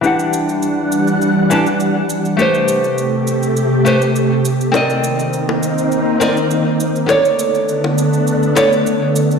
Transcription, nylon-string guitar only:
X:1
M:4/4
L:1/16
Q:1/4=102
K:Em
V:1 name="Nylon-string guitar"
[E,DGf]8- [E,DGf]2 [E,DGa] z4 z | [A,GBc]8- [A,GBc]2 [A,GBc] z4 z | [C_Bd_e]8- [CBde]2 [CBde] z4 z | [B,A^cd]8- [B,Acd]2 [B,Acd] z4 z |]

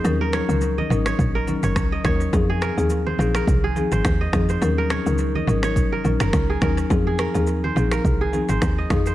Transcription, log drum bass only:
X:1
M:4/4
L:1/16
Q:"Swing 16ths" 1/4=105
K:Ebdor
V:1 name="Log drum bass" clef=bass
E,,3 D,,3 A,,,2 B,,,3 G,,, D,,2 E,,2 | F,,3 E,,3 B,,,2 C,,3 A,,, E,,2 F,,2 | E,,3 D,,3 A,,,4 B,,, G,,, D,,2 E,,2 | F,,3 E,,3 B,,,2 C,,3 A,,, E,,2 F,,2 |]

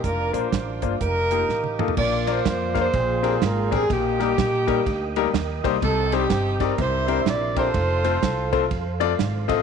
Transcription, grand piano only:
X:1
M:4/4
L:1/8
Q:"Swing" 1/4=125
K:Bb
V:1 name="Grand piano"
z [B,DFB] z [B,DFc] z [B,EFG] z [B,EFA] | z [B,DFBd] z [B,DFBf] z [CDG_AB] z [CDGAB] | z [G,B,EGB] z [G,B,EGB] z [G,B,EGB] z [G,B,EGc] | z [G,CEGc] z [G,CEGd] z [CD=EGB] z [CDEGB] |
z [A,CFAc] z [A,CFAc] z [A,CFAd] z [A,CFAe] |]
V:2 name="Grand piano" clef=bass
z8 | B,,3 z B,,3 z | B,,3 z4 z | C,3 z C,3 z |
z8 |]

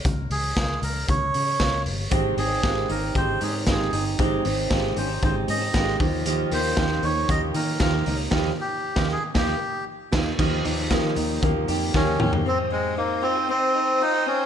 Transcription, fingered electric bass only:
X:1
M:4/4
L:1/16
Q:1/4=116
K:Ab
V:1 name="Fingered electric bass" clef=bass
D,,2 D,,2 D,,2 D,,2 D,,2 D,2 D,,2 G,,,2 | A,,,2 A,,,2 A,,,2 A,,,2 A,,,2 A,,2 A,,,2 G,,,2 | A,,,2 A,,,2 A,,,2 A,,,2 A,,,2 A,,2 A,,,2 E,,2- | E,,2 E,,2 E,,2 E,,2 E,,2 E,2 E,,2 D,,2 |
E,,2 z3 E,,2 z E,,2 z4 E,,2 | E,,2 E,,3 z E,,2 E,,2 F,,2 E,,2 E,,2 | z16 |]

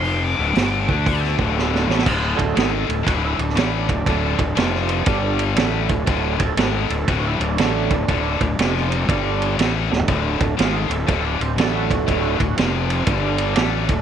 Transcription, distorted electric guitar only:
X:1
M:4/4
L:1/8
Q:"Swing" 1/4=120
K:G
V:1 name="Distorted electric guitar" clef=bass
[=F,,C,=F,] [D,,A,,D,] [G,,D,G,] [D,A,D]2 [D,,A,,D,]2 [A,,E,A,] | [D,,A,,D,] [D,,A,,] [^G,,_E,^G,] [D,,A,,] [D,,A,,D,] [D,,A,,] [A,,=E,A,] [D,,A,,] | [D,,A,,D,] [D,,A,,] [=F,,C,=F,]2 [G,,D,G,]2 [A,,E,A,] [D,,A,,] | [D,,A,,D,] [D,,A,,] [^G,,_E,^G,] [D,,A,,] [D,,A,,D,] [D,,A,,] [A,,=E,A,] [D,,A,,] |
[D,,A,,D,] [D,,A,,] [=F,,C,=F,]2 [G,,D,G,]2 [A,,E,A,] [D,,A,,] | [D,,A,,D,] [D,,A,,] [^G,,_E,^G,] [D,,A,,] [D,,A,,D,] [D,,A,,] [A,,=E,A,] [D,,A,,] | [D,,A,,D,] [D,,A,,] [=F,,C,=F,]2 [G,,D,G,]2 [A,,E,A,] [D,,A,,] |]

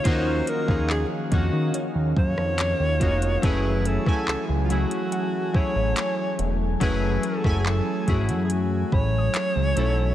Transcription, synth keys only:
X:1
M:4/4
L:1/16
Q:1/4=71
K:F#dor
V:1 name="Synth keys"
[^A,CD^EF]2 z [^E,A,CDG]2 z [D,A,CDF]6- [D,A,CDF] z [A,CDEF]2 | [F,A,CEG]2 z [F,A,CEg]2 z [F,A,CEG]3 z [F,A,CEG]4- [F,A,CEG] z | [F,A,CEG]2 z [F,A,CEg]2 z [F,A,CEG]6- [F,A,CEG] z [F,A,CEA]2 |]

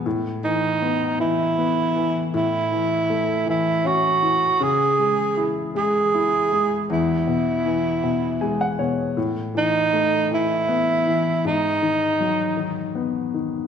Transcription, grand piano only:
X:1
M:6/8
L:1/16
Q:3/8=53
K:Alyd
V:1 name="Grand piano"
z12 | z12 | z12 | z8 g f c2 |
z12 | z12 |]
V:2 name="Grand piano" clef=bass
A,,2 E,2 B,2 E,2 B,2 E,2 | A,,2 E,2 A,2 E,2 C2 E,2 | C,2 G,2 E2 G,2 E2 G,2 | E,,2 B,,2 E,2 B,,2 G,2 B,,2 |
A,,2 E,2 A,2 E,2 B,2 E,2 | G,,2 D,2 F,2 D,2 B,2 D,2 |]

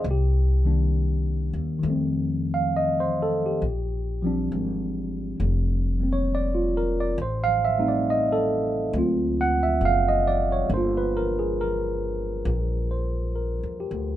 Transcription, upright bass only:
X:1
M:4/4
L:1/8
Q:"Swing" 1/4=68
K:Bbmix
V:1 name="Upright bass" clef=bass
C,,3 E,, F,,4 | B,,,2 A,,,2 F,,,4 | =A,,,4 D,,2 ^F,,,2 | G,,,4 B,,,2- (3B,,, F,, D,, |]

